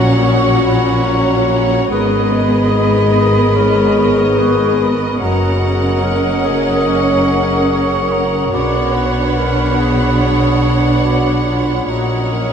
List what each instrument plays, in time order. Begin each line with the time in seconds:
Already playing: double bass section A#1, cello section A#2, french horn section F#3 C#4, viola section C#4, clarinet F#4, violin section C#5 F#5, cor anglais C#5, flute A#5
0.24 clarinet F#4, flute C#6
0.65 flute B5
1.07 flute A#5
1.48 flute A#5
1.90 double bass section G#1, cello section G#2, french horn section B3 G#4, viola section B3, clarinet G#4, violin section A#4 D#5, cor anglais B4, flute B5
2.32 cor anglais D#5
3.55 clarinet A#4, cor anglais C#5
3.98 clarinet A#4
4.38 clarinet G#4, cor anglais B4, flute C#6
4.80 flute B5
5.21 double bass section F#1, cello section F#2, french horn section C#4 A#4, viola section C#4, clarinet F#4, violin section A#4 F#5, cor anglais D#5, flute A#5
5.63 flute A#5
6.04 clarinet A#4
6.45 clarinet G#4
6.87 flute C#6
7.70 cor anglais C#5, flute C#6
8.12 flute A#5
8.52 double bass section B1, cello section B2, french horn section B3 D4, viola section D4, clarinet F#4, violin section C#5 F#5, cor anglais D5, flute B5
8.95 cor anglais B4
9.36 clarinet A#4
9.79 clarinet G#4
10.21 cor anglais C#5
11.04 clarinet F#4, cor anglais D5, flute B5
11.47 clarinet F4
11.87 double bass section A#1, cello section A#2, french horn section F#3 C#4, viola section C#4, clarinet F#4, violin section C#5 F#5, cor anglais D#5, flute A#5
12.32 clarinet A#4